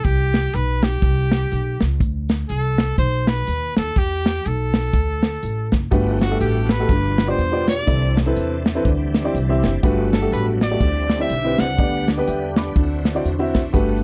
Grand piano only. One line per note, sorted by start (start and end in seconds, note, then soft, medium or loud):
5.91 6.66 G2 medium
5.91 6.15 A3 medium
5.91 6.15 F#4 medium
5.91 6.15 G4 medium
5.91 6.16 B4 medium
6.31 6.57 A3 medium
6.31 6.57 F#4 medium
6.31 6.58 G4 medium
6.31 6.58 A4 medium
6.80 6.90 A3 medium
6.80 6.90 F#4 medium
6.80 6.90 G4 medium
6.80 6.90 A4 medium
6.90 7.64 G2 medium
7.27 7.39 B3 medium
7.27 7.39 F4 medium
7.27 7.39 G4 medium
7.27 7.39 D5 medium
7.52 7.73 B3 medium
7.52 7.74 F4 medium
7.52 7.74 G4 medium
7.52 7.74 D5 medium
7.87 8.62 C3 medium
7.87 8.11 C4 medium
7.87 8.11 E4 medium
7.87 8.11 A4 medium
7.87 8.11 D5 medium
8.26 8.53 C4 medium
8.26 8.53 E4 medium
8.26 8.53 A4 medium
8.26 8.53 B4 medium
8.75 8.85 C4 medium
8.75 8.86 E4 medium
8.75 8.86 A4 medium
8.75 8.86 B4 medium
8.86 9.60 D3 medium
9.24 9.35 C4 medium
9.24 9.36 E4 medium
9.24 9.36 G4 medium
9.24 9.36 D5 medium
9.49 9.70 C4 medium
9.49 9.70 E4 medium
9.49 9.70 G4 medium
9.49 9.70 E5 loud
9.83 10.58 G2 medium
9.83 10.07 A3 medium
9.83 10.06 F#4 medium
9.83 10.07 G4 medium
9.83 10.07 B4 medium
10.22 10.48 A3 medium
10.22 10.48 F#4 medium
10.22 10.49 G4 medium
10.22 10.49 A4 medium
10.71 10.81 A3 medium
10.71 10.81 F#4 medium
10.71 10.81 G4 medium
10.71 10.81 D5 medium
10.82 11.56 D3 medium
11.20 11.31 C4 medium
11.20 11.31 E4 medium
11.20 11.31 G4 medium
11.20 11.31 D5 medium
11.44 11.65 C4 medium
11.44 11.65 E4 medium
11.44 11.65 G4 medium
11.44 11.65 B4 medium
11.79 12.53 D3 medium
11.79 12.02 B3 medium
11.79 12.02 D4 medium
11.79 12.02 G4 medium
11.79 12.03 D5 medium
12.18 12.44 B3 medium
12.18 12.44 D4 medium
12.18 12.44 G4 medium
12.18 12.44 B4 medium
12.27 12.56 E5 medium
12.27 12.55 G5 medium
12.57 13.04 B5 medium
12.57 13.04 D6 medium
12.76 13.51 D3 medium
13.15 13.26 C4 medium
13.15 13.26 E4 medium
13.15 13.26 F#4 medium
13.15 13.26 D5 medium
13.39 13.60 C4 medium
13.39 13.60 E4 medium
13.39 13.60 F#4 medium
13.39 13.60 E5 medium
13.73 14.04 G2 medium
13.73 13.97 A3 medium
13.73 13.97 F#4 medium
13.73 13.97 G4 medium
13.73 13.97 B4 medium